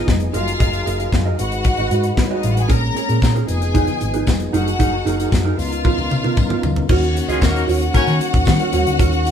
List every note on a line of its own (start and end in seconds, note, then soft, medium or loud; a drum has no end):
0.00 0.33 F3 medium
0.00 0.33 B3 medium
0.00 2.66 D#4 medium
0.00 1.36 G#4 medium
0.07 0.27 F1 medium
0.07 muted clean electric guitar stroke soft
0.07 kick loud
0.07 snare medium
0.07 high conga medium
0.20 muted clean electric guitar stroke soft
0.20 closed hi-hat soft
0.33 0.54 F#1 medium
0.33 1.38 F#3 medium
0.33 1.11 F4 medium
0.33 0.47 G#4 medium
0.33 1.38 A#4 medium
0.33 0.46 A#4 medium
0.33 0.45 D#5 medium
0.33 1.11 F5 loud
0.33 closed hi-hat medium
0.33 high conga medium
0.47 muted clean electric guitar stroke medium
0.47 closed hi-hat soft
0.59 0.79 F#1 loud
0.59 0.73 G#4 medium
0.59 0.72 A#4 medium
0.59 0.72 D#5 medium
0.59 kick loud
0.59 closed hi-hat medium
0.59 muted conga medium
0.73 muted clean electric guitar stroke soft
0.73 closed hi-hat soft
0.86 1.06 F#1 medium
0.86 0.97 G#4 medium
0.86 0.97 A#4 medium
0.86 0.97 D#5 medium
0.86 closed hi-hat medium
1.00 1.11 G#4 soft
1.00 1.10 A#4 medium
1.00 1.10 D#5 medium
1.00 closed hi-hat soft
1.12 1.32 F#2 loud
1.12 kick medium
1.12 snare loud
1.12 high conga medium
1.25 1.38 G#4 medium
1.25 1.39 A#4 medium
1.25 1.38 D#5 medium
1.38 1.68 G#1 medium
1.38 3.46 G#3 medium
1.38 2.11 F#4 loud
1.38 2.69 F#4 medium
1.38 2.69 B4 medium
1.38 2.11 F#5 loud
1.38 muted clean electric guitar stroke soft
1.38 closed hi-hat medium
1.52 muted clean electric guitar stroke soft
1.52 closed hi-hat soft
1.64 muted clean electric guitar stroke soft
1.64 kick loud
1.64 closed hi-hat medium
1.64 muted conga medium
1.77 1.88 G#1 medium
1.77 1.89 F#4 medium
1.77 1.89 B4 medium
1.77 1.89 D#5 medium
1.77 closed hi-hat soft
1.91 2.10 G#2 medium
1.91 2.05 F#4 medium
1.91 2.04 B4 medium
1.91 2.03 D#5 medium
1.91 closed hi-hat medium
1.91 muted conga soft
2.03 muted clean electric guitar stroke medium
2.03 closed hi-hat soft
2.17 2.26 B3 medium
2.17 2.26 B4 medium
2.17 muted clean electric guitar stroke soft
2.17 kick loud
2.17 snare loud
2.17 high conga medium
2.27 2.35 C#4 medium
2.27 2.35 C#5 medium
2.27 2.43 D#5 medium
2.31 2.43 D#4 medium
2.31 2.42 F#4 medium
2.31 2.43 B4 medium
2.31 2.44 D#5 medium
2.43 2.63 A1 medium
2.43 2.53 F4 medium
2.43 2.53 F5 medium
2.43 muted clean electric guitar stroke soft
2.43 closed hi-hat medium
2.43 high conga medium
2.52 2.61 F#4 medium
2.52 2.61 F#5 medium
2.57 muted clean electric guitar stroke medium
2.57 closed hi-hat medium
2.61 2.70 G#4 medium
2.61 2.70 G#5 medium
2.68 2.89 A#1 loud
2.68 3.47 A#3 medium
2.68 2.83 C#4 medium
2.68 3.48 C#4 medium
2.68 2.82 G#4 medium
2.68 3.21 A#4 medium
2.68 2.81 A#4 loud
2.68 3.21 A#5 loud
2.68 kick loud
2.68 closed hi-hat medium
2.68 tambourine medium
2.68 muted conga medium
2.82 muted clean electric guitar stroke soft
2.82 tambourine soft
2.95 3.06 C#4 medium
2.95 3.07 G#4 medium
2.95 3.07 C#5 medium
2.95 closed hi-hat medium
2.95 tambourine medium
3.08 3.19 A#2 medium
3.08 3.20 C#4 soft
3.08 3.20 G#4 medium
3.08 3.19 A#4 medium
3.08 closed hi-hat soft
3.08 tambourine soft
3.22 3.41 A#2 medium
3.22 muted clean electric guitar stroke soft
3.22 kick loud
3.22 snare medium
3.22 tambourine medium
3.22 high conga medium
3.35 3.47 C#4 medium
3.35 3.47 G#4 medium
3.35 3.48 A#4 medium
3.35 closed hi-hat soft
3.47 3.87 F1 medium
3.47 4.52 F3 medium
3.47 4.52 B3 medium
3.47 6.86 D#4 medium
3.47 5.55 G#4 medium
3.47 4.25 G#4 medium
3.47 4.25 G#5 medium
3.47 muted clean electric guitar stroke soft
3.47 closed hi-hat medium
3.47 tambourine medium
3.61 muted clean electric guitar stroke medium
3.61 closed hi-hat soft
3.61 tambourine soft
3.74 3.88 D#4 medium
3.74 3.87 G#4 medium
3.74 3.87 B4 medium
3.74 kick medium
3.74 closed hi-hat medium
3.74 tambourine medium
3.74 muted conga medium
3.74 low conga medium
3.87 muted clean electric guitar stroke medium
3.87 closed hi-hat soft
3.87 tambourine soft
4.00 4.28 G#1 medium
4.00 muted clean electric guitar stroke soft
4.00 closed hi-hat medium
4.00 tambourine soft
4.00 muted conga soft
4.14 4.25 D#4 medium
4.14 4.25 G#4 medium
4.14 4.24 B4 medium
4.14 closed hi-hat soft
4.27 4.47 F1 medium
4.27 muted clean electric guitar stroke soft
4.27 kick medium
4.27 snare loud
4.27 tambourine medium
4.27 high conga medium
4.40 muted clean electric guitar stroke soft
4.40 closed hi-hat soft
4.52 4.72 F#1 medium
4.52 5.57 F#3 medium
4.52 4.67 D#4 medium
4.52 5.30 F#4 medium
4.52 4.66 G#4 medium
4.52 6.87 A#4 medium
4.52 4.65 A#4 medium
4.52 5.30 F#5 loud
4.52 closed hi-hat medium
4.52 tambourine medium
4.52 high conga medium
4.66 muted clean electric guitar stroke soft
4.66 closed hi-hat soft
4.79 4.99 F#1 loud
4.79 4.93 D#4 medium
4.79 4.92 G#4 medium
4.79 4.91 A#4 medium
4.79 kick loud
4.79 closed hi-hat medium
4.79 tambourine medium
4.79 muted conga medium
4.92 muted clean electric guitar stroke soft
5.05 5.25 F#1 loud
5.05 5.16 D#4 medium
5.05 5.17 G#4 medium
5.05 5.17 A#4 medium
5.05 closed hi-hat medium
5.05 tambourine medium
5.18 5.30 D#4 soft
5.18 5.30 G#4 medium
5.18 5.29 A#4 medium
5.18 closed hi-hat soft
5.18 tambourine soft
5.32 5.51 F#2 loud
5.32 muted clean electric guitar stroke soft
5.32 kick loud
5.32 snare medium
5.32 tambourine loud
5.32 high conga medium
5.45 5.57 D#4 medium
5.45 5.58 G#4 medium
5.45 5.57 A#4 medium
5.57 5.87 C#2 medium
5.57 6.88 C#3 medium
5.57 6.88 B3 medium
5.57 6.88 F4 medium
5.57 6.61 F4 medium
5.57 6.61 F5 loud
5.57 muted clean electric guitar stroke soft
5.57 open hi-hat medium
5.57 tambourine medium
5.71 muted clean electric guitar stroke soft
5.71 closed hi-hat soft
5.84 5.98 B3 medium
5.84 5.97 F4 medium
5.84 5.96 A#4 loud
5.84 kick loud
5.84 high tom medium
5.84 tambourine medium
5.84 muted conga medium
5.97 6.07 C#2 medium
5.97 muted clean electric guitar stroke medium
5.97 high tom soft
5.97 tambourine soft
6.10 6.30 C#3 medium
6.10 muted clean electric guitar stroke soft
6.10 mid tom medium
6.10 tambourine medium
6.24 6.35 B3 medium
6.24 6.35 F4 medium
6.24 6.34 A#4 medium
6.24 mid tom medium
6.36 muted clean electric guitar stroke soft
6.36 kick loud
6.36 mid tom medium
6.36 tambourine medium
6.36 high conga medium
6.49 6.62 B3 medium
6.49 6.63 F4 medium
6.49 6.63 A#4 medium
6.49 mid tom medium
6.63 6.82 D2 medium
6.63 muted clean electric guitar stroke soft
6.63 floor tom medium
6.63 tambourine medium
6.63 high conga medium
6.76 muted clean electric guitar stroke soft
6.76 floor tom medium
6.89 7.18 D#2 loud
6.89 9.31 D#3 medium
6.89 9.31 A#3 medium
6.89 9.31 C#4 medium
6.89 9.31 F#4 medium
6.89 7.03 F#4 loud
6.89 7.02 A#4 loud
6.89 7.01 C#5 loud
6.89 9.31 F#5 loud
6.89 kick loud
6.89 crash loud
6.89 tambourine medium
6.89 muted conga medium
7.03 muted clean electric guitar stroke medium
7.03 closed hi-hat soft
7.15 muted clean electric guitar stroke soft
7.15 closed hi-hat medium
7.15 tambourine medium
7.28 7.38 C#2 medium
7.28 7.39 G#3 medium
7.28 7.39 C#4 medium
7.28 7.39 F4 medium
7.28 7.40 F#4 medium
7.28 7.39 G#4 medium
7.28 7.40 A#4 medium
7.28 7.39 D#5 medium
7.28 closed hi-hat soft
7.28 tambourine soft
7.41 7.61 D#2 medium
7.41 7.63 A#3 medium
7.41 7.63 D#4 loud
7.41 7.63 F#4 medium
7.41 7.63 A#4 loud
7.41 muted clean electric guitar stroke soft
7.41 kick loud
7.41 snare loud
7.41 tambourine loud
7.41 high conga medium
7.55 muted clean electric guitar stroke medium
7.55 closed hi-hat soft
7.68 7.87 D#2 medium
7.68 7.81 F#4 medium
7.68 7.81 A#4 medium
7.68 7.80 C#5 loud
7.68 open hi-hat medium
7.68 tambourine medium
7.79 muted clean electric guitar stroke soft
7.79 closed hi-hat soft
7.79 tambourine soft
7.93 8.15 C#4 loud
7.93 8.15 F#4 loud
7.93 8.15 A#4 loud
7.93 8.15 C#5 loud
7.93 muted clean electric guitar stroke soft
7.93 muted picked electric bass stroke soft
7.93 kick loud
7.93 closed hi-hat medium
7.93 tambourine medium
7.93 muted conga medium
7.93 low conga medium
8.06 8.17 D#3 loud
8.06 muted clean electric guitar stroke medium
8.06 closed hi-hat soft
8.06 tambourine soft
8.19 closed hi-hat medium
8.19 tambourine soft
8.19 muted conga soft
8.33 8.44 D#2 medium
8.33 muted clean electric guitar stroke soft
8.33 kick loud
8.33 closed hi-hat medium
8.45 8.57 D#3 loud
8.45 muted clean electric guitar stroke soft
8.45 kick loud
8.45 snare loud
8.45 tambourine loud
8.45 high conga medium
8.59 8.71 F#4 medium
8.59 8.71 A#4 medium
8.59 8.71 C#5 medium
8.59 closed hi-hat soft
8.72 8.83 D#2 loud
8.72 8.86 F#4 medium
8.72 8.86 A#4 medium
8.72 8.85 C#5 loud
8.72 closed hi-hat medium
8.72 tambourine medium
8.72 high conga medium
8.86 8.96 D2 loud
8.86 muted clean electric guitar stroke medium
8.86 closed hi-hat medium
8.99 9.28 D#2 loud
8.99 9.13 F#4 medium
8.99 9.12 A#4 loud
8.99 9.11 C#5 loud
8.99 kick loud
8.99 closed hi-hat medium
8.99 tambourine medium
8.99 muted conga medium
9.13 muted clean electric guitar stroke soft
9.13 closed hi-hat soft
9.25 muted clean electric guitar stroke soft
9.25 closed hi-hat medium
9.25 tambourine medium